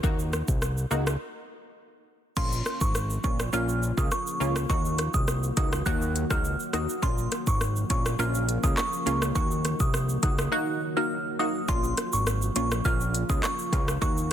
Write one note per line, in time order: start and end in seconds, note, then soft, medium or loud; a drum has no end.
0.03 0.43 D#2 loud
0.03 0.57 A#3 medium
0.03 0.58 D#4 medium
0.03 0.58 F#4 loud
0.03 kick loud
0.03 shaker medium
0.19 shaker medium
0.33 cross-stick medium
0.33 shaker soft
0.48 0.86 C2 medium
0.48 kick medium
0.48 shaker medium
0.62 cross-stick medium
0.62 shaker medium
0.77 shaker medium
0.91 1.17 C#2 medium
0.91 1.13 A#3 medium
0.91 1.13 D#4 medium
0.91 1.13 F#4 medium
0.91 shaker medium
1.07 cross-stick loud
1.07 shaker medium
2.36 2.62 A#1 loud
2.36 4.67 C#3 medium
2.36 4.67 F3 medium
2.36 6.99 A#3 medium
2.36 2.91 A#3 medium
2.36 2.91 C#4 medium
2.36 4.67 F4 medium
2.36 2.91 F4 loud
2.36 2.60 C6 medium
2.36 kick loud
2.36 crash medium
2.36 shaker medium
2.52 shaker medium
2.66 cross-stick medium
2.66 shaker soft
2.81 3.19 G#1 medium
2.81 2.92 C#6 medium
2.81 kick medium
2.81 shaker medium
2.95 cross-stick medium
2.95 shaker medium
3.10 shaker medium
3.24 3.50 A#1 medium
3.24 3.46 A#3 medium
3.24 3.46 C#4 medium
3.24 3.46 F4 medium
3.24 3.37 C#6 medium
3.24 kick loud
3.24 shaker medium
3.40 cross-stick loud
3.40 shaker medium
3.53 3.92 A#1 medium
3.53 3.94 A#3 loud
3.53 3.94 C#4 medium
3.53 3.94 F4 loud
3.53 3.66 F6 medium
3.53 shaker medium
3.69 shaker medium
3.83 shaker soft
3.97 4.10 C#2 loud
3.97 4.18 A#3 medium
3.97 4.19 C#4 medium
3.97 4.19 F4 medium
3.97 4.09 D#6 medium
3.97 kick medium
3.97 shaker medium
4.11 4.53 C#6 medium
4.11 cross-stick medium
4.11 shaker medium
4.27 shaker medium
4.40 4.66 C#2 medium
4.40 4.62 A#3 medium
4.40 4.62 C#4 medium
4.40 4.63 F4 medium
4.40 shaker medium
4.56 cross-stick loud
4.56 shaker medium
4.69 5.09 D#2 loud
4.69 7.00 D#3 medium
4.69 7.00 F#3 medium
4.69 5.24 A#3 medium
4.69 5.24 D#4 medium
4.69 7.00 F#4 medium
4.69 5.24 F#4 loud
4.69 4.93 C#6 medium
4.69 kick loud
4.69 shaker medium
4.85 shaker medium
4.98 cross-stick medium
4.98 closed hi-hat medium
4.98 shaker soft
5.14 5.52 C2 medium
5.14 5.25 D#6 medium
5.14 kick medium
5.14 shaker medium
5.28 cross-stick medium
5.28 shaker medium
5.43 shaker medium
5.57 5.83 C#2 medium
5.57 5.79 A#3 medium
5.57 5.79 D#4 medium
5.57 5.79 F#4 medium
5.57 5.69 D#6 medium
5.57 kick loud
5.57 closed hi-hat medium
5.57 shaker medium
5.73 cross-stick loud
5.73 shaker medium
5.86 6.25 D#2 loud
5.86 6.27 A#3 loud
5.86 6.27 D#4 medium
5.86 6.27 F#4 loud
5.86 5.98 F#6 medium
5.86 kick medium
5.86 shaker medium
6.02 shaker medium
6.16 closed hi-hat medium
6.16 shaker soft
6.30 6.56 C#2 medium
6.30 6.52 A#3 medium
6.30 6.52 D#4 medium
6.30 6.52 F#4 medium
6.30 6.42 F6 medium
6.30 kick loud
6.30 cross-stick medium
6.30 shaker medium
6.45 shaker medium
6.60 shaker medium
6.73 6.87 D#2 medium
6.73 6.95 A#3 medium
6.73 6.95 D#4 medium
6.73 6.96 F#4 medium
6.73 6.86 D#6 medium
6.73 cross-stick medium
6.73 closed hi-hat medium
6.73 shaker medium
6.89 shaker medium
7.02 7.28 A#1 loud
7.02 9.33 C#3 medium
7.02 9.33 F3 medium
7.02 7.56 A#3 medium
7.02 11.65 A#3 medium
7.02 7.57 C#4 medium
7.02 9.33 F4 medium
7.02 7.57 F4 loud
7.02 7.26 C6 medium
7.02 kick loud
7.02 shaker medium
7.18 shaker medium
7.32 cross-stick medium
7.32 closed hi-hat medium
7.32 shaker soft
7.47 7.85 G#1 medium
7.47 7.59 C#6 medium
7.47 kick medium
7.47 shaker medium
7.61 cross-stick medium
7.61 shaker medium
7.76 shaker medium
7.90 8.16 A#1 medium
7.90 8.12 A#3 medium
7.90 8.12 C#4 medium
7.90 8.12 F4 medium
7.90 8.03 C#6 medium
7.90 kick loud
7.90 closed hi-hat medium
7.90 shaker medium
8.06 cross-stick loud
8.06 shaker medium
8.19 8.58 A#1 medium
8.19 8.60 A#3 medium
8.19 8.60 C#4 medium
8.19 8.60 F4 loud
8.19 8.32 F6 medium
8.19 shaker medium
8.35 shaker medium
8.49 closed hi-hat medium
8.49 shaker soft
8.63 8.76 C#2 medium
8.63 8.85 A#3 medium
8.63 8.85 C#4 medium
8.63 8.85 F4 medium
8.63 8.75 D#6 medium
8.63 kick loud
8.63 shaker medium
8.77 9.19 C#6 medium
8.77 cross-stick medium
8.77 clap medium
8.77 shaker medium
8.93 shaker medium
9.06 9.32 C#2 medium
9.06 9.28 A#3 medium
9.06 9.28 C#4 medium
9.06 9.28 F4 medium
9.06 closed hi-hat medium
9.06 shaker medium
9.22 cross-stick loud
9.22 shaker medium
9.35 9.75 D#2 loud
9.35 11.66 D#3 medium
9.35 11.67 F#3 medium
9.35 9.89 A#3 medium
9.35 9.90 D#4 medium
9.35 11.66 F#4 medium
9.35 9.90 F#4 loud
9.35 9.59 C#6 loud
9.35 kick loud
9.35 shaker medium
9.51 shaker medium
9.65 cross-stick medium
9.65 closed hi-hat medium
9.65 shaker medium
9.80 10.18 C2 medium
9.80 9.91 D#6 medium
9.80 kick medium
9.80 shaker medium
9.94 cross-stick medium
9.94 shaker medium
10.09 shaker medium
10.23 10.49 C#2 medium
10.23 10.45 A#3 medium
10.23 10.45 D#4 medium
10.23 10.45 F#4 medium
10.23 10.35 D#6 medium
10.23 kick loud
10.23 closed hi-hat medium
10.23 shaker medium
10.38 cross-stick loud
10.38 shaker medium
10.52 10.93 A#3 loud
10.52 10.93 D#4 medium
10.52 10.93 F#4 loud
10.52 10.65 F#6 medium
10.97 11.18 A#3 medium
10.97 11.18 D#4 medium
10.97 11.18 F#4 medium
10.97 11.08 F6 medium
11.39 11.61 A#3 medium
11.39 11.61 D#4 medium
11.39 11.62 F#4 medium
11.39 11.52 D#6 medium
11.68 11.94 A#1 loud
11.68 13.99 C#3 medium
11.68 13.99 F3 medium
11.68 12.22 A#3 medium
11.68 14.33 A#3 medium
11.68 12.23 C#4 medium
11.68 14.00 F4 medium
11.68 12.23 F4 loud
11.68 11.92 C6 medium
11.68 kick loud
11.68 shaker medium
11.84 shaker medium
11.97 cross-stick medium
11.97 closed hi-hat medium
11.97 shaker medium
12.13 12.51 G#1 medium
12.13 12.24 C#6 medium
12.13 shaker medium
12.27 cross-stick loud
12.27 shaker medium
12.42 shaker medium
12.56 12.82 A#1 medium
12.56 12.78 A#3 medium
12.56 12.78 C#4 medium
12.56 12.78 F4 medium
12.56 12.68 C#6 medium
12.56 closed hi-hat medium
12.56 shaker medium
12.72 cross-stick loud
12.72 shaker medium
12.85 13.24 A#1 medium
12.85 13.26 A#3 medium
12.85 13.26 C#4 medium
12.85 13.26 F4 loud
12.85 12.97 F6 medium
12.85 kick medium
12.85 shaker medium
13.01 shaker medium
13.14 closed hi-hat medium
13.14 shaker medium
13.29 13.42 C#2 medium
13.29 13.51 A#3 medium
13.29 13.51 C#4 medium
13.29 13.51 F4 medium
13.29 13.41 D#6 medium
13.29 kick loud
13.29 shaker medium
13.43 13.85 C#6 medium
13.43 cross-stick medium
13.43 clap medium
13.43 shaker medium
13.59 shaker medium
13.73 13.98 C#2 loud
13.73 13.94 A#3 medium
13.73 13.95 C#4 medium
13.73 13.95 F4 medium
13.73 kick loud
13.73 closed hi-hat medium
13.73 shaker medium
13.88 cross-stick loud
13.88 shaker medium
14.01 14.33 D#2 loud
14.01 14.33 A#3 medium
14.01 14.33 D#4 medium
14.01 14.33 F#4 loud
14.01 14.25 C#6 loud
14.01 kick loud
14.01 shaker medium
14.17 shaker medium